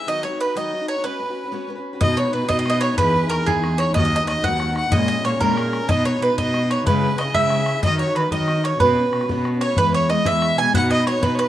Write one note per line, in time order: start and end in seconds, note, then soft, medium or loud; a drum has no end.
0.01 0.07 B3 soft
0.01 0.08 E4 soft
0.07 0.23 D#3 medium
0.07 0.22 F#3 medium
0.07 0.23 B3 medium
0.07 0.24 D#4 medium
0.07 0.24 F#4 medium
0.07 0.23 D#5 medium
0.07 0.26 D#5 loud
0.23 0.31 F#3 medium
0.23 0.32 B3 medium
0.23 0.31 D#4 medium
0.23 0.30 F#4 medium
0.23 0.38 C#5 medium
0.23 0.43 C#5 medium
0.31 0.48 B3 soft
0.31 0.47 D#4 medium
0.31 0.45 F#4 soft
0.41 0.55 B4 medium
0.41 0.59 B4 medium
0.46 0.55 B3 soft
0.46 0.56 D#4 soft
0.46 0.55 F#4 medium
0.55 0.72 D#3 medium
0.55 0.70 F#3 medium
0.55 0.71 B3 medium
0.55 0.73 D#4 medium
0.55 0.73 F#4 medium
0.55 0.86 D#5 medium
0.55 0.89 D#5 medium
0.71 0.80 F#3 medium
0.71 0.80 B3 medium
0.71 0.80 D#4 medium
0.71 0.78 F#4 medium
0.79 0.97 B3 soft
0.79 0.95 D#4 medium
0.79 0.94 F#4 medium
0.88 1.03 C#5 medium
0.88 1.07 C#5 medium
0.95 1.03 B3 soft
0.95 1.04 D#4 soft
0.95 1.04 F#4 soft
1.04 1.18 B3 medium
1.04 1.20 C#4 medium
1.04 1.21 F#4 medium
1.04 1.65 B4 medium
1.04 1.70 B4 medium
1.04 1.21 B4 medium
1.19 1.28 B3 medium
1.19 1.29 C#4 medium
1.19 1.29 F#4 medium
1.19 1.27 B4 medium
1.28 1.46 C#4 soft
1.28 1.44 F#4 medium
1.28 1.42 B4 soft
1.43 1.52 C#4 soft
1.43 1.52 F#4 soft
1.43 1.52 B4 soft
1.52 1.66 B3 medium
1.52 1.67 C#4 medium
1.52 1.69 F#4 medium
1.52 1.69 B4 medium
1.67 1.76 B3 medium
1.67 1.77 C#4 medium
1.67 1.75 F#4 medium
1.67 1.74 B4 medium
1.75 1.94 C#4 soft
1.75 1.93 F#4 soft
1.75 1.92 B4 medium
1.93 2.01 C#4 soft
1.93 2.01 F#4 soft
1.93 2.01 B4 medium
2.01 2.31 B2 medium
2.01 2.15 B3 medium
2.01 2.16 D#4 medium
2.01 2.17 F#4 medium
2.01 2.18 B4 medium
2.01 2.16 D#5 medium
2.01 2.21 D#5 loud
2.01 bodhran medium
2.16 2.25 B3 medium
2.16 2.26 D#4 medium
2.16 2.25 F#4 medium
2.16 2.23 B4 medium
2.16 2.32 C#5 medium
2.16 2.35 C#5 medium
2.16 bodhran soft
2.24 2.43 D#4 medium
2.24 2.42 F#4 soft
2.24 2.40 B4 medium
2.33 2.48 B2 medium
2.33 2.48 B4 medium
2.33 2.52 B4 medium
2.41 2.48 D#4 soft
2.41 2.49 F#4 medium
2.41 2.50 B4 soft
2.48 2.94 B2 loud
2.48 2.64 B3 medium
2.48 2.65 D#4 medium
2.48 2.66 F#4 medium
2.48 2.67 B4 medium
2.48 2.58 D#5 medium
2.48 2.84 D#5 loud
2.48 bodhran medium
2.58 2.68 D#5 medium
2.58 bodhran soft
2.65 2.73 B3 medium
2.65 2.74 D#4 medium
2.65 2.74 F#4 medium
2.65 2.72 B4 medium
2.65 bodhran medium
2.70 2.88 B4 medium
2.70 2.80 D#5 medium
2.75 2.91 D#4 soft
2.75 2.90 F#4 soft
2.81 2.96 C#5 medium
2.81 2.98 C#5 medium
2.81 bodhran medium
2.89 2.99 D#4 soft
2.89 2.99 F#4 soft
2.89 2.98 B4 medium
2.98 3.28 E2 loud
2.98 3.14 E3 medium
2.98 3.13 B3 medium
2.98 3.15 D#4 medium
2.98 3.14 E4 medium
2.98 3.15 G#4 medium
2.98 3.28 B4 medium
2.98 3.32 B4 loud
2.98 bodhran medium
3.14 3.22 B3 medium
3.14 3.23 D#4 medium
3.14 3.23 E4 medium
3.14 3.22 G#4 medium
3.14 bodhran soft
3.23 3.39 D#4 soft
3.23 3.40 E4 soft
3.23 3.37 G#4 medium
3.30 3.45 E2 medium
3.30 3.45 A#4 medium
3.30 3.48 A#4 loud
3.30 bodhran medium
3.39 3.48 D#4 medium
3.39 3.46 E4 soft
3.39 3.47 G#4 medium
3.46 3.91 E2 loud
3.46 3.63 E3 medium
3.46 3.62 B3 medium
3.46 3.64 D#4 medium
3.46 3.63 E4 medium
3.46 3.77 G#4 medium
3.46 3.80 G#4 medium
3.46 3.64 G#4 medium
3.46 bodhran medium
3.56 bodhran soft
3.63 3.71 B3 medium
3.63 3.72 D#4 medium
3.63 3.72 E4 medium
3.63 3.70 G#4 medium
3.63 bodhran medium
3.71 3.88 D#4 soft
3.71 3.89 E4 soft
3.71 3.85 G#4 medium
3.78 3.94 C#5 medium
3.78 3.95 C#5 medium
3.78 bodhran medium
3.87 3.96 D#4 soft
3.87 3.97 E4 soft
3.87 3.95 G#4 medium
3.94 4.25 D#2 loud
3.94 4.12 D#3 medium
3.94 4.12 F#3 medium
3.94 4.12 B3 medium
3.94 4.12 D#4 medium
3.94 4.13 F#4 medium
3.94 4.04 D#5 medium
3.94 4.25 D#5 loud
3.94 bodhran medium
4.05 4.15 D#5 medium
4.12 4.20 F#3 medium
4.12 4.21 B3 medium
4.12 4.21 D#4 medium
4.12 4.19 F#4 medium
4.12 4.26 D#5 medium
4.12 bodhran soft
4.20 4.37 B3 soft
4.20 4.37 D#4 medium
4.20 4.36 F#4 medium
4.27 4.42 D#2 medium
4.27 4.42 D#5 medium
4.27 4.46 D#5 medium
4.27 bodhran medium
4.37 4.46 B3 soft
4.37 4.45 D#4 medium
4.37 4.44 F#4 soft
4.44 4.88 D#2 medium
4.44 4.61 D#3 medium
4.44 4.59 F#3 medium
4.44 4.61 B3 medium
4.44 4.62 D#4 medium
4.44 4.89 F#5 medium
4.44 4.76 F#5 loud
4.44 bodhran medium
4.48 4.62 F#4 medium
4.52 bodhran soft
4.60 4.68 F#3 medium
4.60 4.69 B3 medium
4.60 4.70 D#4 medium
4.60 bodhran medium
4.64 4.68 F#4 medium
4.69 4.86 B3 soft
4.69 4.85 D#4 soft
4.69 4.84 F#4 soft
4.76 4.95 F#5 loud
4.76 bodhran medium
4.85 4.94 B3 soft
4.85 4.93 D#4 soft
4.85 4.92 F#4 soft
4.92 5.22 A#2 medium
4.92 5.09 A#2 medium
4.92 5.09 E3 medium
4.92 5.07 G#3 medium
4.92 5.09 C#4 medium
4.92 5.10 E4 medium
4.92 5.10 G#4 medium
4.92 5.07 D#5 loud
4.92 5.27 D#5 loud
4.92 bodhran medium
5.08 5.17 G#3 medium
5.08 5.17 C#4 medium
5.08 5.16 E4 medium
5.08 5.15 G#4 medium
5.08 5.23 D#5 medium
5.08 bodhran soft
5.16 5.34 G#3 soft
5.16 5.33 C#4 soft
5.16 5.32 E4 soft
5.16 5.31 G#4 medium
5.24 5.39 A#2 medium
5.24 5.40 C#5 medium
5.24 5.43 C#5 loud
5.24 bodhran medium
5.32 5.40 G#3 soft
5.32 5.40 C#4 soft
5.32 5.41 E4 medium
5.32 5.40 G#4 medium
5.40 5.56 A#2 medium
5.40 5.85 A#2 loud
5.40 5.56 E3 medium
5.40 5.54 G#3 medium
5.40 5.56 C#4 medium
5.40 5.56 E4 loud
5.40 5.58 G#4 medium
5.40 5.86 A#4 medium
5.40 5.92 A#4 medium
5.40 bodhran medium
5.49 bodhran soft
5.56 5.64 G#3 medium
5.56 5.65 C#4 medium
5.56 5.64 E4 medium
5.56 5.63 G#4 medium
5.56 bodhran medium
5.64 5.82 G#3 soft
5.64 5.82 C#4 soft
5.64 5.81 E4 soft
5.64 5.79 G#4 medium
5.73 bodhran medium
5.81 5.89 G#3 soft
5.81 5.89 C#4 soft
5.81 5.89 E4 soft
5.81 5.89 G#4 soft
5.89 6.19 B2 loud
5.89 6.04 B3 medium
5.89 6.06 D#4 medium
5.89 6.06 F#4 medium
5.89 6.06 B4 medium
5.89 6.04 D#5 medium
5.89 6.07 D#5 loud
5.89 bodhran medium
6.05 6.13 B3 medium
6.05 6.14 D#4 medium
6.05 6.13 F#4 medium
6.05 6.12 B4 medium
6.05 6.20 C#5 medium
6.05 6.25 C#5 medium
6.05 bodhran soft
6.13 6.31 D#4 soft
6.13 6.29 F#4 soft
6.13 6.28 B4 medium
6.21 6.36 B2 medium
6.21 6.37 B4 medium
6.21 6.38 B4 medium
6.29 6.37 D#4 soft
6.29 6.38 F#4 soft
6.29 6.37 B4 medium
6.37 6.82 B2 loud
6.37 6.52 B3 medium
6.37 6.53 D#4 medium
6.37 6.55 F#4 medium
6.37 6.55 B4 medium
6.37 6.68 D#5 medium
6.37 6.73 D#5 medium
6.37 bodhran medium
6.46 bodhran soft
6.53 6.61 B3 soft
6.53 6.62 D#4 medium
6.53 6.62 F#4 medium
6.53 6.62 B4 medium
6.53 bodhran medium
6.63 6.79 D#4 soft
6.63 6.77 F#4 medium
6.63 6.76 B4 medium
6.71 6.86 C#5 medium
6.71 6.87 C#5 medium
6.71 bodhran medium
6.77 6.86 D#4 soft
6.77 6.86 F#4 soft
6.77 6.86 B4 medium
6.86 7.02 C#3 medium
6.86 7.16 C#3 loud
6.86 7.00 G#3 medium
6.86 7.01 B3 medium
6.86 7.03 E4 medium
6.86 7.03 G#4 medium
6.86 7.16 B4 medium
6.86 7.22 B4 loud
6.86 bodhran medium
7.01 7.10 G#3 medium
7.01 7.10 B3 medium
7.01 7.09 E4 medium
7.01 7.07 G#4 medium
7.01 bodhran soft
7.08 7.27 B3 soft
7.08 7.26 E4 soft
7.08 7.24 G#4 medium
7.18 7.34 C#3 medium
7.18 7.33 D#5 medium
7.18 7.38 D#5 medium
7.18 bodhran medium
7.25 7.34 B3 medium
7.25 7.35 E4 soft
7.25 7.34 G#4 medium
7.34 7.79 C#3 medium
7.34 7.51 C#3 medium
7.34 7.48 G#3 medium
7.34 7.50 B3 medium
7.34 7.51 E4 medium
7.34 7.52 G#4 medium
7.34 7.80 E5 medium
7.34 7.83 E5 loud
7.34 bodhran medium
7.43 bodhran soft
7.49 7.58 G#3 medium
7.49 7.59 B3 medium
7.49 7.58 E4 soft
7.49 7.56 G#4 medium
7.49 bodhran medium
7.57 7.76 B3 soft
7.57 7.75 E4 soft
7.57 7.74 G#4 medium
7.66 bodhran medium
7.75 7.83 B3 soft
7.75 7.84 E4 soft
7.75 7.83 G#4 medium
7.83 8.13 D#3 loud
7.83 7.99 D#3 medium
7.83 7.97 F#3 medium
7.83 7.99 B3 medium
7.83 7.99 D#4 medium
7.83 8.00 F#4 loud
7.83 7.99 D#5 medium
7.83 7.98 D#5 loud
7.83 bodhran medium
7.98 8.07 F#3 medium
7.98 8.08 B3 medium
7.98 8.07 D#4 medium
7.98 8.05 F#4 medium
7.98 8.15 C#5 medium
7.98 8.18 C#5 medium
7.98 bodhran soft
8.07 8.25 B3 soft
8.07 8.24 D#4 medium
8.07 8.22 F#4 medium
8.15 8.30 D#3 medium
8.15 8.31 B4 medium
8.15 8.32 B4 medium
8.15 bodhran medium
8.23 8.31 B3 soft
8.23 8.32 D#4 soft
8.23 8.32 F#4 medium
8.32 8.48 D#3 medium
8.32 8.76 D#3 medium
8.32 8.47 F#3 medium
8.32 8.48 B3 medium
8.32 8.48 D#4 medium
8.32 8.49 F#4 medium
8.32 8.62 D#5 medium
8.32 8.67 D#5 medium
8.32 bodhran medium
8.40 bodhran soft
8.48 8.56 F#3 medium
8.48 8.57 B3 medium
8.48 8.56 D#4 medium
8.48 8.55 F#4 medium
8.48 bodhran medium
8.56 8.73 B3 soft
8.56 8.72 D#4 soft
8.56 8.71 F#4 medium
8.64 8.79 C#5 medium
8.64 8.83 C#5 medium
8.64 bodhran medium
8.72 8.79 B3 soft
8.72 8.81 D#4 soft
8.72 8.80 F#4 soft
8.80 9.10 B2 medium
8.80 8.96 B3 medium
8.80 8.97 C#4 medium
8.80 8.97 F#4 medium
8.80 9.41 B4 medium
8.80 9.45 B4 medium
8.80 8.97 B4 medium
8.80 bodhran medium
8.96 9.05 B3 medium
8.96 9.05 C#4 medium
8.96 9.06 F#4 medium
8.96 9.04 B4 medium
8.96 bodhran soft
9.05 9.23 C#4 soft
9.05 9.22 F#4 soft
9.05 9.20 B4 medium
9.13 9.28 B2 medium
9.13 bodhran medium
9.21 9.29 C#4 soft
9.21 9.30 F#4 medium
9.21 9.29 B4 medium
9.21 bodhran medium
9.29 9.73 B2 medium
9.29 9.43 B3 medium
9.29 9.44 C#4 medium
9.29 9.46 F#4 medium
9.29 9.46 B4 loud
9.29 bodhran medium
9.38 bodhran soft
9.44 9.52 B3 medium
9.44 9.53 C#4 medium
9.44 9.53 F#4 medium
9.44 9.52 B4 medium
9.44 bodhran medium
9.53 9.70 C#4 soft
9.53 9.69 F#4 medium
9.53 9.67 B4 medium
9.61 9.77 C#5 medium
9.61 9.80 C#5 medium
9.61 bodhran medium
9.68 9.77 C#4 soft
9.68 9.77 F#4 medium
9.68 9.77 B4 medium
9.76 10.22 E2 medium
9.76 10.08 E3 medium
9.76 10.09 G#3 medium
9.76 10.10 B3 medium
9.76 10.10 E4 medium
9.76 9.93 B4 medium
9.76 9.93 B4 loud
9.76 bodhran medium
9.94 10.11 C#5 medium
9.94 10.09 C#5 medium
9.94 bodhran soft
10.09 10.23 E3 medium
10.09 10.24 G#3 medium
10.09 10.25 B3 medium
10.09 10.26 E4 medium
10.09 10.25 D#5 medium
10.09 10.28 D#5 loud
10.09 bodhran medium
10.24 10.56 E2 medium
10.24 10.57 E3 medium
10.24 10.57 G#3 medium
10.24 10.58 B3 medium
10.24 10.59 E4 medium
10.24 10.56 E5 medium
10.24 10.61 E5 loud
10.24 bodhran medium
10.42 bodhran medium
10.58 10.73 B2 medium
10.58 10.72 E3 medium
10.58 10.73 G#3 medium
10.58 10.71 B3 medium
10.58 10.74 E4 medium
10.58 10.73 G#5 medium
10.58 10.75 G#5 loud
10.72 11.19 B2 loud
10.72 11.04 B3 medium
10.72 11.05 D#4 medium
10.72 11.06 F#4 medium
10.72 11.07 B4 loud
10.72 10.90 F#5 medium
10.72 10.90 F#5 loud
10.72 bodhran medium
10.90 11.07 D#5 medium
10.90 11.06 D#5 loud
10.90 bodhran soft
11.06 11.19 B3 medium
11.06 11.20 D#4 medium
11.06 11.21 F#4 medium
11.06 11.22 B4 medium
11.06 11.22 C#5 medium
11.06 11.26 C#5 loud
11.06 bodhran medium
11.21 11.48 B2 medium
11.21 11.48 B3 medium
11.21 11.48 D#4 medium
11.21 11.48 F#4 medium
11.21 11.38 B4 medium
11.21 11.48 B4 medium
11.21 bodhran medium
11.25 11.36 B4 medium
11.35 11.42 C#5 medium
11.39 11.48 B4 medium
11.39 11.48 B4 loud
11.39 bodhran medium